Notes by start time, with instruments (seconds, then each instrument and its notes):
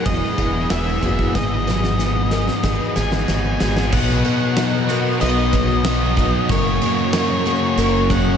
Already playing: overdriven electric guitar E2 F#3 B3, distorted electric guitar E3 F#3 B3 E4, analog synth pad E4 G#4 F#5 G#5, twelve-string acoustic guitar F#4
0.06 fingered electric bass E1, overdriven electric guitar G#3, distorted electric guitar G#4, twelve-string acoustic guitar B4, lead electric guitar D#5, kick, open hi-hat
0.37 fingered electric bass E1, distorted electric guitar B3, twelve-string acoustic guitar G#4, overdriven electric guitar G#4, kick, tambourine
0.69 fingered electric bass E1, overdriven electric guitar B3, distorted electric guitar E4, lead electric guitar E5, snare, open hi-hat, tambourine
0.87 tambourine
1.02 fingered electric bass F#1, distorted electric guitar B3, twelve-string acoustic guitar F#4, overdriven electric guitar G#4, kick, tambourine
1.19 kick
1.34 fingered electric bass G#1, distorted electric guitar G#2, overdriven electric guitar G#2, twelve-string acoustic guitar B4, lead electric guitar D#5, analog synth pad D#5, kick, snare
1.67 distorted electric guitar F#3, overdriven electric guitar F#3, twelve-string acoustic guitar B4, snare, tambourine
1.84 snare, tambourine
1.99 distorted electric guitar B3, overdriven electric guitar B3, snare, tambourine
2.17 tambourine
2.31 distorted electric guitar D#4, overdriven electric guitar D#4, twelve-string acoustic guitar A#4, snare
2.48 snare
2.63 fingered electric bass G#1, overdriven electric guitar B3, distorted electric guitar G#4, twelve-string acoustic guitar B4, kick, snare, tambourine
2.80 tambourine
2.95 fingered electric bass G#1, distorted electric guitar B3, twelve-string acoustic guitar G#4, overdriven electric guitar G#4, lead electric guitar G#5, snare, tambourine
3.12 snare, tambourine
3.27 fingered electric bass G#1, distorted electric guitar D#4, overdriven electric guitar D#4, snare, tambourine
3.45 tambourine
3.60 fingered electric bass G#1, distorted electric guitar B3, twelve-string acoustic guitar F#4, overdriven electric guitar G#4, snare, tambourine
3.77 snare, tambourine
3.91 fingered electric bass B1, overdriven electric guitar B2 F#3 B3 D#4 F#4, distorted electric guitar B2, analog synth pad B3 D#5 F#5 D#6, twelve-string acoustic guitar B4, lead electric guitar F#5, kick, crash, tambourine
4.09 snare
4.24 distorted electric guitar B3, overdriven electric guitar B3, twelve-string acoustic guitar B4, tambourine, crash
4.57 distorted electric guitar F#3, overdriven electric guitar D#4, snare, tambourine, crash
4.87 overdriven electric guitar B2 F#3 B3 D#4 F#4, distorted electric guitar B3, twelve-string acoustic guitar A#4, tambourine, crash
5.21 fingered electric bass B1, overdriven electric guitar B3, distorted electric guitar D#4, twelve-string acoustic guitar B4, lead electric guitar D#5, tambourine, crash
5.53 overdriven electric guitar F#3, distorted electric guitar B3, twelve-string acoustic guitar G#4, kick, tambourine, crash
5.84 overdriven electric guitar B2 F#3 B3 D#4 F#4, distorted electric guitar F#4, snare, tambourine, crash
6.17 distorted electric guitar D#4, overdriven electric guitar D#4, twelve-string acoustic guitar F#4, kick, crash
6.48 fingered electric bass F#1, overdriven electric guitar F#2 C#3 F#3 A#3, distorted electric guitar F#2, analog synth pad A#4 C#5 C#6, twelve-string acoustic guitar A#4, lead electric guitar C#5, kick, tambourine, crash
6.52 overdriven electric guitar C#4
6.81 overdriven electric guitar A#3, distorted electric guitar A#3, twelve-string acoustic guitar A#4, tambourine, crash
7.13 distorted electric guitar F#3, overdriven electric guitar C#4, snare, tambourine, crash
7.45 overdriven electric guitar F#2 C#3 F#3 A#3 C#4 F#4, distorted electric guitar A#3, twelve-string acoustic guitar G#4, tambourine, crash
7.77 fingered electric bass F#1, overdriven electric guitar A#3, distorted electric guitar C#4, twelve-string acoustic guitar A#4, tambourine, crash
8.10 overdriven electric guitar F#3, distorted electric guitar A#3, twelve-string acoustic guitar G#4, lead electric guitar F#5, kick, tambourine, crash